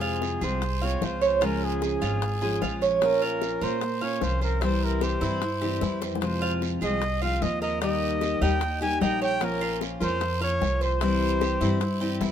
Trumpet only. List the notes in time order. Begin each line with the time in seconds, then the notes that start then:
Already playing: G#4
0.44 C5
0.84 C#5
1.04 C5
1.23 C5
1.44 A#4
1.64 G#4
1.84 G#4
3.04 A#4
3.63 C5
4.03 C#5
4.23 C5
4.43 A#4
4.63 C5
4.84 A#4
5.03 C5
6.23 C5
6.84 D#5
7.23 F5
7.42 D#5
7.62 D#5
7.82 D#5
8.42 G5
8.81 G#5
9.02 G5
9.23 G5
9.43 A#4
10.02 C5
10.43 C#5
10.83 C5